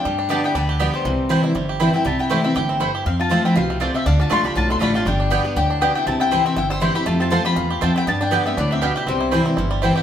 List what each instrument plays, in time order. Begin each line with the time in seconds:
Already playing: resonator guitar played with a steel bar D4, mandolin G5
0.05 upright bass G2, steel-string acoustic guitar G2, five-string banjo G3
0.19 five-string banjo D4
0.29 steel-string acoustic guitar D3 G3 B3 G4, mandolin B3 G4 D5 G5 A5, resonator guitar played with a steel bar D4, five-string banjo G4
0.44 five-string banjo B3, resonator guitar played with a steel bar E4, mandolin G5
0.55 upright bass D2, steel-string acoustic guitar D3, resonator guitar played with a steel bar B3, five-string banjo D4, mandolin D5
0.69 five-string banjo G4
0.79 steel-string acoustic guitar D3 G3 B3 G4, five-string banjo G3, mandolin B3 G4 D5 G5
0.94 resonator guitar played with a steel bar G3, five-string banjo G4, mandolin C5
1.05 upright bass C2, steel-string acoustic guitar C3, five-string banjo E3
1.29 steel-string acoustic guitar E3 G3 C4 E4, mandolin C4 E4 C5 G5, five-string banjo C4
1.43 steel-string acoustic guitar C4 E4, five-string banjo E4
1.55 upright bass G1, steel-string acoustic guitar G2, five-string banjo G3
1.69 five-string banjo G4
1.80 steel-string acoustic guitar E3 G3 C4 E4, mandolin C4 E4 C5 G5, five-string banjo E4, resonator guitar played with a steel bar E4
1.93 five-string banjo C4, steel-string acoustic guitar C4 E4, resonator guitar played with a steel bar E4, mandolin G5
2.05 upright bass C2, steel-string acoustic guitar C3, five-string banjo G3, resonator guitar played with a steel bar E4, mandolin A5
2.19 resonator guitar played with a steel bar E4, mandolin G5
2.29 steel-string acoustic guitar E3 A3 C4 E4, mandolin A3 E4 C5 G5, five-string banjo G4
2.44 resonator guitar played with a steel bar C4, steel-string acoustic guitar C4 E4, five-string banjo E4, mandolin E5
2.55 upright bass G1, steel-string acoustic guitar A2, resonator guitar played with a steel bar E4, five-string banjo G4, mandolin G5
2.69 five-string banjo C4
2.80 steel-string acoustic guitar G2, mandolin A3 E4 C5 G5, resonator guitar played with a steel bar E4, five-string banjo E4
2.95 five-string banjo G4
3.06 upright bass F2, steel-string acoustic guitar F2, five-string banjo C4, resonator guitar played with a steel bar C4, mandolin F5
3.20 five-string banjo F4, resonator guitar played with a steel bar F4, mandolin A5
3.30 steel-string acoustic guitar F3 A3 C4 F4, five-string banjo F3, mandolin C4 F4 C5 A5
3.45 five-string banjo C4, resonator guitar played with a steel bar E4, mandolin G5
3.55 upright bass C2, steel-string acoustic guitar B2, resonator guitar played with a steel bar C4, five-string banjo F4, mandolin F5
3.70 five-string banjo A3
3.80 steel-string acoustic guitar C3, resonator guitar played with a steel bar A3, mandolin C4 F4 C5 D5 A5, five-string banjo F4
3.94 resonator guitar played with a steel bar C4, five-string banjo G4, mandolin E5
4.06 upright bass D2, steel-string acoustic guitar D3, resonator guitar played with a steel bar D4, five-string banjo D4, mandolin F5
4.20 five-string banjo D4, resonator guitar played with a steel bar F4, mandolin A5
4.30 upright bass C2, steel-string acoustic guitar D3 A3 D4 F4, five-string banjo D3, mandolin A3 F4 D5 A5 C6, resonator guitar played with a steel bar A4
4.44 five-string banjo D4, steel-string acoustic guitar D4 F4, resonator guitar played with a steel bar G4, mandolin B5
4.56 upright bass B1, steel-string acoustic guitar A2, five-string banjo D4, resonator guitar played with a steel bar F4, mandolin A5
4.70 five-string banjo A3, resonator guitar played with a steel bar A4, mandolin C6
4.79 upright bass A1, steel-string acoustic guitar D3 A3 D4 F4, mandolin A3 F4 D5 A5 A#5 B5, five-string banjo D4, resonator guitar played with a steel bar F4
4.83 resonator guitar played with a steel bar F4
4.94 steel-string acoustic guitar D4 F4, resonator guitar played with a steel bar F4, five-string banjo G4, mandolin A5
5.05 upright bass G1, steel-string acoustic guitar G2, five-string banjo G3, resonator guitar played with a steel bar D4, mandolin G5
5.20 five-string banjo D4
5.30 steel-string acoustic guitar D3 G3 B3 G4, five-string banjo G3, mandolin B3 G4 D5 G5
5.44 five-string banjo B3, steel-string acoustic guitar B3 G4
5.56 upright bass D2, steel-string acoustic guitar A2, resonator guitar played with a steel bar D4, five-string banjo G4, mandolin G5
5.70 five-string banjo D4
5.81 steel-string acoustic guitar B2, mandolin B3 G4 D5 G5, resonator guitar played with a steel bar D4, five-string banjo G4
5.95 five-string banjo D4, resonator guitar played with a steel bar E4, mandolin G5
6.06 upright bass C2, steel-string acoustic guitar C3, five-string banjo C4, resonator guitar played with a steel bar E4, mandolin A5
6.20 five-string banjo E4, resonator guitar played with a steel bar E4, mandolin G5
6.31 steel-string acoustic guitar E3 G3 C4 E4, five-string banjo E3, mandolin C4 E4 C5 G5
6.45 five-string banjo C4, resonator guitar played with a steel bar C4, mandolin E5
6.56 upright bass G1, steel-string acoustic guitar G2, five-string banjo E4, resonator guitar played with a steel bar E4, mandolin G5
6.70 five-string banjo G3, resonator guitar played with a steel bar C5, mandolin E6
6.80 steel-string acoustic guitar E3 G3 C4 E4, mandolin C4 E4 C5 G5 C6, five-string banjo E4, resonator guitar played with a steel bar G4
6.95 steel-string acoustic guitar C4 E4, five-string banjo G4, resonator guitar played with a steel bar G4, mandolin B5
7.06 steel-string acoustic guitar F2, upright bass F2, five-string banjo A3, resonator guitar played with a steel bar F4, mandolin A5
7.20 five-string banjo C4, resonator guitar played with a steel bar F4, mandolin A5
7.30 steel-string acoustic guitar F3 A3 C4 F4, mandolin C4 F4 C5 A5 C6, five-string banjo F4, resonator guitar played with a steel bar A4
7.44 steel-string acoustic guitar C4 F4, resonator guitar played with a steel bar F4, five-string banjo G4, mandolin B5
7.56 steel-string acoustic guitar E2, upright bass E2, five-string banjo F4
7.70 five-string banjo G4
7.81 steel-string acoustic guitar F2, upright bass F2, five-string banjo A3, mandolin C4 F4 C5 G5 A5, resonator guitar played with a steel bar C4
7.96 five-string banjo C4, resonator guitar played with a steel bar E4, mandolin G5
8.06 upright bass G2, steel-string acoustic guitar G2, five-string banjo B3, resonator guitar played with a steel bar D4, mandolin A5
8.21 five-string banjo D4, resonator guitar played with a steel bar D4, mandolin G5
8.31 steel-string acoustic guitar D3 G3 B3 G4, five-string banjo D3, mandolin B3 G4 D5 G5
8.46 five-string banjo B3, steel-string acoustic guitar B3 G4, resonator guitar played with a steel bar C4, mandolin E5
8.57 upright bass D2, steel-string acoustic guitar A2, resonator guitar played with a steel bar B3, five-string banjo D4, mandolin D5
8.71 five-string banjo G3, resonator guitar played with a steel bar C4, mandolin E5
8.81 steel-string acoustic guitar B2, mandolin B3 G4 D5 F5 G5, five-string banjo D4, resonator guitar played with a steel bar D4
8.96 resonator guitar played with a steel bar E4, five-string banjo G4, mandolin G5
9.06 upright bass C2, steel-string acoustic guitar C3, resonator guitar played with a steel bar G3, five-string banjo C4, mandolin C5
9.20 five-string banjo E4
9.31 five-string banjo E3, steel-string acoustic guitar E3 G3 C4 E4, mandolin C4 E4 C5 G5
9.46 five-string banjo C4, steel-string acoustic guitar C4 E4
9.57 upright bass G1, steel-string acoustic guitar G2, five-string banjo E4
9.71 five-string banjo G3
9.82 steel-string acoustic guitar E3 G3 C4 E4, mandolin C4 E4 C5 G5, five-string banjo E4
9.96 five-string banjo G4, mandolin G5